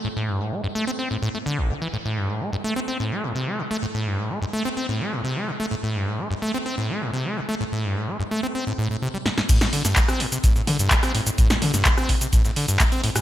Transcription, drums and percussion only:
9.26 snare
9.38 snare
9.49 kick, closed hi-hat, crash, shaker
9.61 snare, shaker
9.73 closed hi-hat, open hi-hat
9.85 snare, closed hi-hat, shaker
9.96 kick, snare, clap, closed hi-hat, shaker
10.08 cross-stick, snare, shaker
10.20 closed hi-hat, open hi-hat
10.32 closed hi-hat, shaker
10.44 kick, closed hi-hat, shaker
10.56 closed hi-hat, shaker
10.67 closed hi-hat, open hi-hat, mid tom
10.79 closed hi-hat, shaker
10.91 kick, snare, clap, closed hi-hat, shaker
11.03 cross-stick, snare, closed hi-hat, shaker
11.15 closed hi-hat, open hi-hat
11.27 closed hi-hat, shaker
11.38 kick, closed hi-hat, shaker
11.50 snare, shaker
11.62 closed hi-hat, open hi-hat, mid tom
11.74 snare, closed hi-hat, shaker
11.85 kick, snare, clap, closed hi-hat, shaker
11.97 cross-stick, shaker
12.09 kick, closed hi-hat, open hi-hat
12.21 closed hi-hat, shaker
12.33 kick, closed hi-hat, shaker
12.45 snare, shaker
12.56 closed hi-hat, open hi-hat
12.68 closed hi-hat, shaker
12.80 kick, snare, clap, closed hi-hat, shaker
12.92 snare, closed hi-hat, shaker
13.04 snare, open hi-hat
13.16 cross-stick, closed hi-hat, shaker

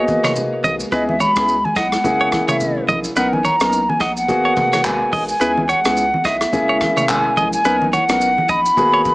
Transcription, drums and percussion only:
0.08 kick, high conga, shaker
0.24 cross-stick, mid tom, high conga, shaker
0.36 low conga, shaker
0.64 high conga, low conga, shaker
0.80 shaker
0.92 kick, shaker
1.09 high conga
1.20 high conga, shaker
1.36 kick, cross-stick, shaker
1.48 shaker
1.65 high conga
1.76 kick, cross-stick, shaker
1.92 cross-stick, shaker
2.04 kick, low conga, shaker
2.32 kick, cross-stick, high conga, shaker
2.48 mid tom, high conga, shaker
2.60 low conga, shaker
2.88 high conga, low conga, shaker
3.04 shaker
3.16 shaker
3.33 high conga
3.45 high conga, shaker
3.60 cross-stick, shaker
3.73 shaker
3.89 high conga
4.00 kick, cross-stick, shaker
4.17 shaker
4.28 kick, low conga, shaker
4.57 kick, mid tom, high conga, shaker
4.73 cross-stick, high conga, shaker
4.85 clap, low conga, shaker
5.13 kick, open hi-hat, high conga, low conga, shaker
5.29 shaker
5.41 hi-hat pedal, shaker
5.58 high conga
5.69 high conga, shaker
5.85 cross-stick, shaker
5.97 shaker
6.14 high conga
6.25 kick, cross-stick, shaker
6.41 cross-stick, shaker
6.53 kick, low conga, shaker
6.81 kick, cross-stick, high conga, shaker
6.97 mid tom, high conga, shaker
7.09 clap, low conga, shaker
7.37 high conga, low conga, shaker
7.53 shaker
7.65 shaker
7.82 high conga
7.93 high conga, shaker
8.09 cross-stick, shaker
8.21 shaker
8.38 high conga
8.49 kick, shaker
8.66 shaker
8.77 kick, low conga, shaker
9.05 kick, high conga, shaker

